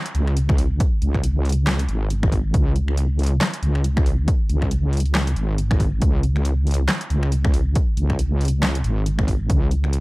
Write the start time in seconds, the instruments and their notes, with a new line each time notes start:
0.06 closed hi-hat
0.15 wobble bass C#2, closed hi-hat
0.27 finger snap
0.37 closed hi-hat
0.49 finger snap, kick
0.58 open hi-hat
0.80 kick, closed hi-hat
1.02 wobble bass C#2, closed hi-hat
1.14 finger snap, kick
1.24 closed hi-hat
1.45 open hi-hat
1.49 closed hi-hat
1.52 closed hi-hat
1.67 finger snap, snare, clap
1.79 closed hi-hat
1.89 wobble bass G#1, closed hi-hat
2.10 closed hi-hat
2.23 finger snap, kick
2.32 kick, open hi-hat
2.54 wobble bass C#2, kick, closed hi-hat
2.76 closed hi-hat
2.88 finger snap
2.97 closed hi-hat
3.19 open hi-hat
3.23 closed hi-hat
3.26 closed hi-hat
3.41 finger snap, snare, clap
3.54 closed hi-hat
3.63 wobble bass C#2, closed hi-hat
3.75 finger snap
3.84 closed hi-hat
3.97 finger snap, kick
4.06 open hi-hat
4.28 kick, closed hi-hat
4.49 wobble bass C#2, closed hi-hat
4.62 finger snap, kick
4.71 closed hi-hat
4.93 open hi-hat
4.97 closed hi-hat
5.00 closed hi-hat
5.06 closed hi-hat
5.15 finger snap, snare, clap
5.27 closed hi-hat
5.36 wobble bass G#1, closed hi-hat
5.58 closed hi-hat
5.71 finger snap, kick
5.80 kick, open hi-hat
6.02 wobble bass C#2, kick, closed hi-hat
6.23 closed hi-hat
6.36 finger snap
6.45 closed hi-hat
6.67 open hi-hat
6.71 closed hi-hat
6.74 closed hi-hat
6.89 finger snap, snare, clap
7.01 closed hi-hat
7.10 wobble bass C#2, closed hi-hat
7.23 finger snap
7.32 closed hi-hat
7.45 finger snap, kick
7.54 open hi-hat
7.75 kick, closed hi-hat
7.97 wobble bass C#2, closed hi-hat
8.10 finger snap, kick
8.19 closed hi-hat
8.41 open hi-hat
8.45 closed hi-hat
8.48 closed hi-hat
8.63 finger snap, snare, clap
8.75 closed hi-hat
8.84 wobble bass G#1, closed hi-hat
9.06 closed hi-hat
9.19 finger snap, kick
9.28 kick, open hi-hat
9.50 wobble bass C#2, kick, closed hi-hat
9.71 closed hi-hat
9.84 finger snap
9.93 closed hi-hat